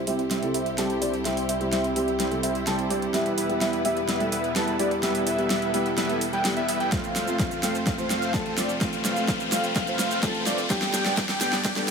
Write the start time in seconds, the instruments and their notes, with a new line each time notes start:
Already playing: string section C2 C3 G3 E4 G4, riser
0.07 felt piano C3 G3 C4 E4 G4, supersaw synth G3 C4 E4 C5 E5, analog synth lead E5, open hi-hat
0.19 closed hi-hat
0.31 supersaw synth G3 C4 E4 C5 E5, analog synth lead E5, snare, closed hi-hat
0.42 felt piano C3 G3 C4 E4 A4, closed hi-hat
0.54 supersaw synth G3 C4 E4 C5 E5, analog synth lead E5, open hi-hat
0.66 closed hi-hat
0.77 felt piano C3 G3 C4 E4 G4, supersaw synth G3 C4 E4 C5 A5, analog synth lead A5, snare, closed hi-hat
0.90 closed hi-hat
1.01 felt piano C3 G3 C4 E4 G4, supersaw synth G3 C4 E4 C5 D5, analog synth lead D5, open hi-hat
1.14 closed hi-hat
1.25 felt piano C3 G3 C4 E4 G4, supersaw synth G3 C4 E4 C5 E5, analog synth lead E5, snare, closed hi-hat
1.37 open hi-hat
1.49 supersaw synth G3 C4 E4 C5 E5, analog synth lead E5, open hi-hat
1.60 felt piano C3 G3 C4 E4 G4, closed hi-hat
1.72 supersaw synth G3 C4 E4 C5 E5, analog synth lead E5, snare, closed hi-hat
1.84 closed hi-hat
1.95 felt piano C3 G3 C4 E4 G4, supersaw synth G3 C4 E4 C5 E5, analog synth lead E5, open hi-hat
2.08 closed hi-hat
2.20 supersaw synth G3 C4 E4 C5 E5, analog synth lead E5, snare, closed hi-hat
2.31 felt piano C3 G3 C4 E4 A4, closed hi-hat
2.43 supersaw synth G3 C4 E4 C5 E5, analog synth lead E5, open hi-hat
2.55 closed hi-hat
2.66 felt piano C3 G3 C4 E4 G4, supersaw synth G3 C4 E4 C5 A5, analog synth lead A5, snare, closed hi-hat
2.79 closed hi-hat
2.90 felt piano G3 C4 E4 G4, supersaw synth G3 C4 E4 C5 D5, analog synth lead D5, open hi-hat
3.02 closed hi-hat
3.13 string section E2 B2 B4, felt piano G3 B3 E4 G4, supersaw synth G3 B3 E4 B4 E5, analog synth lead E5, snare, closed hi-hat
3.26 closed hi-hat
3.38 supersaw synth G3 B3 E4 B4 E5, analog synth lead E5, open hi-hat
3.49 felt piano G3 B3 E4 G4, closed hi-hat
3.61 supersaw synth G3 B3 E4 B4 E5, analog synth lead E5, snare, closed hi-hat
3.73 closed hi-hat
3.84 felt piano G3 B3 E4 G4, supersaw synth G3 B3 E4 B4 E5, analog synth lead E5, open hi-hat
3.97 closed hi-hat
4.09 supersaw synth G3 B3 E4 B4 E5, analog synth lead E5, snare, closed hi-hat
4.20 felt piano G3 B3 E4 A4, closed hi-hat
4.32 supersaw synth G3 B3 E4 B4 E5, analog synth lead E5, open hi-hat
4.44 closed hi-hat
4.55 felt piano G3 B3 E4 G4, supersaw synth G3 B3 E4 B4 A5, analog synth lead A5, snare, closed hi-hat
4.68 closed hi-hat
4.79 felt piano G3 B3 E4 G4, supersaw synth G3 B3 E4 B4 D5, analog synth lead D5, open hi-hat
4.91 closed hi-hat
5.02 felt piano G3 B3 E4 G4, supersaw synth G3 B3 E4 B4 E5, string section A4, analog synth lead E5, snare, closed hi-hat
5.15 open hi-hat
5.27 supersaw synth G3 B3 E4 B4 E5, analog synth lead E5, open hi-hat
5.38 felt piano G3 B3 E4 G4, closed hi-hat
5.50 supersaw synth G3 B3 E4 B4 E5, analog synth lead E5, snare, closed hi-hat
5.62 closed hi-hat
5.73 felt piano G3 B3 E4 G4, supersaw synth G3 B3 E4 B4 E5, analog synth lead E5, open hi-hat
5.86 closed hi-hat
5.98 supersaw synth G3 B3 E4 B4 E5, analog synth lead E5, snare, closed hi-hat
6.09 felt piano G3 B3 E4 A4, closed hi-hat
6.21 open hi-hat
6.33 supersaw synth G3 B3 E4 B4 G5, analog synth lead G5, closed hi-hat
6.44 felt piano G3 B3 E4 G4, snare, closed hi-hat
6.57 supersaw synth G3 B3 E4 B4 E5, analog synth lead E5, closed hi-hat
6.68 supersaw synth G3 B3 E4 B4 E5, analog synth lead E5, open hi-hat
6.80 supersaw synth G3 B3 E4 B4 G5, analog synth lead G5, closed hi-hat
6.91 string section F2 C3 A3 F4 C5, felt piano A3 C4 F4 A4, supersaw synth A3 C4 F4 C5 F5, analog synth lead F5, kick, snare, closed hi-hat, shaker
7.04 closed hi-hat, shaker
7.16 supersaw synth A3 C4 F4 C5 F5, analog synth lead F5, snare, open hi-hat, shaker
7.27 felt piano A3 C4 F4 A4, closed hi-hat, shaker
7.39 analog synth lead F5, kick, snare, closed hi-hat, shaker
7.51 closed hi-hat, shaker
7.62 felt piano A3 C4 F4 A4, supersaw synth A3 C4 F4 C5 F5, analog synth lead F5, snare, open hi-hat, shaker
7.75 closed hi-hat, shaker
7.86 supersaw synth A3 C4 F4 C5 F5, analog synth lead F5, kick, snare, closed hi-hat, shaker
7.98 felt piano A3 C4 F4 C5, closed hi-hat, shaker
8.10 supersaw synth A3 C4 F4 C5 F5, analog synth lead F5, snare, open hi-hat, shaker
8.22 closed hi-hat, shaker
8.33 felt piano A3 C4 F4 A4, supersaw synth A3 C4 F4 C5, analog synth lead A5, kick, snare, closed hi-hat, shaker
8.46 closed hi-hat
8.57 felt piano A3 C4 F4 A4, supersaw synth A3 C4 F4 C5 D5, analog synth lead D5, snare, open hi-hat, shaker
8.69 closed hi-hat, shaker
8.80 felt piano A3 C4 F4 A4, supersaw synth A3 C4 F4 C5 F5, string section B4, analog synth lead F5, kick, snare, closed hi-hat, shaker
8.93 open hi-hat, shaker
9.05 supersaw synth A3 C4 F4 C5 F5, analog synth lead F5, snare, open hi-hat, shaker
9.16 felt piano A3 C4 F4 A4, closed hi-hat, shaker
9.28 analog synth lead F5, kick, snare, closed hi-hat, shaker
9.40 closed hi-hat, shaker
9.51 felt piano A3 C4 F4 A4, supersaw synth A3 C4 F4 C5 F5, analog synth lead F5, snare, open hi-hat, shaker
9.64 closed hi-hat, shaker
9.75 supersaw synth A3 C4 F4 C5, analog synth lead F5, kick, snare, closed hi-hat, shaker
9.87 felt piano A3 C4 F4 C5, closed hi-hat, shaker
9.99 supersaw synth A3 C4 F4 C5 F5, analog synth lead F5, snare, open hi-hat, shaker
10.11 closed hi-hat, shaker
10.22 felt piano A3 C4 F4 A4, supersaw synth A3 F4, analog synth lead A5, kick, snare, closed hi-hat, shaker
10.35 closed hi-hat
10.46 felt piano A3 C4 F4 A4, supersaw synth A3 C4 F4 C5 D5, analog synth lead D5, snare, open hi-hat, shaker
10.58 closed hi-hat, shaker
10.69 felt piano G2 G3 B3 D4 G4, string section G2 D3 B3 G4 D5, supersaw synth B3 D4 G4 D5 G5, analog synth lead G5, kick, snare, closed hi-hat, shaker
10.82 snare, closed hi-hat, shaker
10.94 supersaw synth B3 D4 G4 D5 G5, analog synth lead G5, snare, open hi-hat, shaker
11.05 felt piano G2 G3 B3 D4 G4, snare, closed hi-hat, shaker
11.17 supersaw synth B3 D4 G4 D5 G5, analog synth lead G5, kick, snare, closed hi-hat, shaker
11.29 snare, closed hi-hat, shaker
11.40 felt piano G2 G3 B3 D4 G4, supersaw synth B3 D4 G4 D5 G5, analog synth lead G5, snare, open hi-hat, shaker
11.53 snare, closed hi-hat, shaker
11.64 supersaw synth B3 D4 G4 D5 G5, analog synth lead G5, kick, snare, closed hi-hat, shaker
11.76 felt piano G2 G3 B3 D4 A4, snare, closed hi-hat, shaker